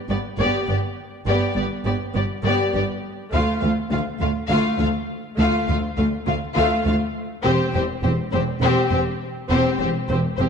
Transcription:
0.09 G1 G2 B3 G4 D5
0.38 G1 G2 B3 G4 D5
0.67 G1 G2 B3 G4 D5
1.26 G1 G2 B3 G4 D5
1.55 G1 G2 B3 G4 D5
1.85 G1 G2 B3 G4 D5
2.14 G1 G2 B3 G4 D5
2.44 G1 G2 B3 G4 D5
2.73 G1 G2 B3 G4 D5
3.32 D2 A3 F4 F5
3.61 D2 A3 F4 F5
3.91 D2 A3 F4 F5
4.20 D2 A3 F4 F5
4.49 D2 A3 F4 F5
4.79 D2 A3 F4 F5
5.38 D2 A3 F4 F5
5.68 D2 A3 F4 F5
5.97 D2 A3 F4 F5
6.26 D2 A3 F4 F5
6.55 D2 A3 F4 F5
6.85 D2 A3 F4 F5
7.44 E1 E2 C4 G4 C5
7.73 E1 E2 C4 G4 C5
8.03 E1 E2 C4 G4 C5
8.32 E1 E2 C4 G4 C5
8.61 E1 E2 C4 G4 C5
8.90 E1 E2 C4 G4 C5
9.49 E1 E2 C4 G4 C5
9.79 E1 E2 C4 G4 C5
10.08 E1 E2 C4 G4 C5
10.38 E1 E2 C4 G4 C5

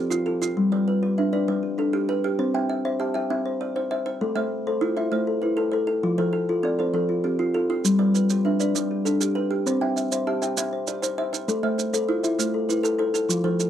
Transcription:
Already playing: C4 G4 A4 B4 C5
0.10 F4, maracas
0.26 F4 A4
0.42 F4, maracas
0.57 G3
0.72 G3 B4 D5
0.88 B4
1.03 G4 B4
1.18 D4 B4 E5
1.33 D4 B4 D5
1.48 G3 B4
1.63 G4
1.78 D4 A4
1.93 G4
2.09 G4 B4
2.24 G4
2.39 C4 C5
2.54 C4 E5 G5
2.70 E5
2.85 C5 E5
3.00 G4 E5 A5
3.14 G4 E5 G5
3.30 C4 E5
3.46 C5
3.61 G4 D5
3.76 C5
3.91 C5 E5
4.06 C5
4.21 A3 A4
4.35 A3 C5 E5
4.67 A4 C5
4.81 E4 F4 C5
4.97 E4 C5 E5
5.12 A3 C5
5.27 A4
5.42 E4 B4
5.57 A4
5.72 A4 C5
5.87 A4
6.03 F3 F4
6.18 F3 A4 C5
6.33 A4
6.49 F4 A4
6.63 C4 A4 D5
6.79 C4 A4 C5
6.94 F3 A4
7.09 F4
7.24 C4 G4
7.39 F4
7.54 F4 A4
7.70 F4
7.85 G3 G4, maracas
7.99 G3 B4 D5
8.14 B4, maracas
8.30 G4 B4, maracas
8.45 D4 B4 E5
8.60 D4 B4 D5, maracas
8.75 G3 B4, maracas
8.91 G4
9.05 D4 A4, maracas
9.21 G4, maracas
9.35 G4 B4
9.51 G4
9.66 C4 C5, maracas
9.81 C4 E5 G5
9.96 E5, maracas
10.12 C5 E5, maracas
10.27 G4 E5 A5
10.42 G4 E5 G5, maracas
10.57 C4 E5, maracas
10.73 C5
10.87 G4 D5, maracas
11.02 C5, maracas
11.18 C5 E5
11.33 C5, maracas
11.48 A3 A4, maracas
11.63 A3 C5 E5
11.78 C5, maracas
11.93 A4 C5, maracas
12.08 E4 F4 C5
12.23 E4 C5 E5, maracas
12.39 A3 C5, maracas
12.54 A4
12.69 E4 B4, maracas
12.83 A4, maracas
12.99 A4 C5
13.14 A4, maracas
13.29 F3 F4, maracas
13.44 F3 A4 C5
13.60 A4, maracas

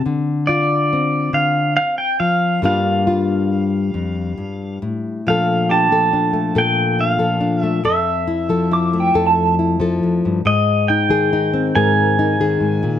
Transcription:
0.06 D3
0.47 F4 D5
0.93 C4
1.33 D3 F5
1.77 F5
1.98 G5
2.20 F3 F5
2.62 G2 G3 A#3 D4 F4 F5
3.07 F4
3.94 F2
4.37 G2
4.82 A2
5.27 A#2 F3 A3 D4 A4 F5
5.69 D4 G4 A5
5.91 F3 A4
6.13 D4
6.33 A3
6.55 A#2 A4 G5
6.99 D4 F5
7.18 F3 A4
7.41 D4
7.61 A3 E5
7.84 F2 A4 E5
8.27 E4
8.49 F3 A4
8.71 E4 D6
8.93 A3
9.00 G5
9.14 F2 A4
9.27 A5
9.59 E4
9.80 F3 A4
10.03 F2
10.25 G2
10.45 G#2 D#5
10.88 D#4 G5
11.09 D#3 G#4
11.33 D#4
11.53 C4
11.75 G#2 G#4 A#4 G#5
12.19 D#4
12.40 D#3 G#4
12.60 G#2
12.83 A#2

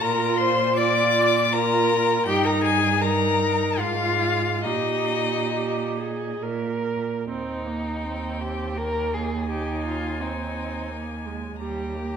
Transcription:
0.01 A#2 F4 A#4 A#5
0.37 C5 C6
0.76 F4 D5 D6
1.52 F4 A#4 A#5
2.27 G2 D#4 G4 G5
2.45 A#4 A#5
2.63 G#4 G#5
3.00 D#4 A#4 A#5
3.78 G#2 F4 F5
4.64 A#2 D#4 G4 D#5
5.54 G4
5.98 G#4
6.41 A#2 A#4
7.26 D#2 C4 D#4 G5
7.66 A#3
8.04 C4
8.41 G4
8.76 A#3 A#4
9.14 G#4
9.47 D#4 G4 G#5
9.86 F4
10.20 C4 D#4
10.91 A#3
11.26 G#3
11.60 D#2 G3 G4 A#5
11.96 A#3

